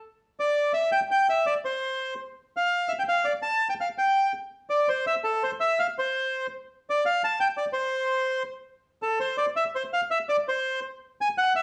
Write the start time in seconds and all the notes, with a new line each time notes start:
0.40 D5
0.74 E5
0.92 G5
1.11 G5
1.29 E5
1.46 D5
1.65 C5
2.57 F5
2.89 E5
2.99 G5
3.09 F5
3.25 D5
3.42 A5
3.70 G5
3.81 F5
3.98 G5
4.70 D5
4.89 C5
5.07 E5
5.24 A4
5.43 C5
5.60 E5
5.79 F5
5.99 C5
6.90 D5
7.06 F5
7.24 A5
7.40 G5
7.57 D5
7.73 C5
9.02 A4
9.20 C5
9.38 D5
9.56 E5
9.75 C5
9.93 F5
10.11 E5
10.29 D5
10.49 C5
11.21 G#5
11.38 F#5
11.56 E5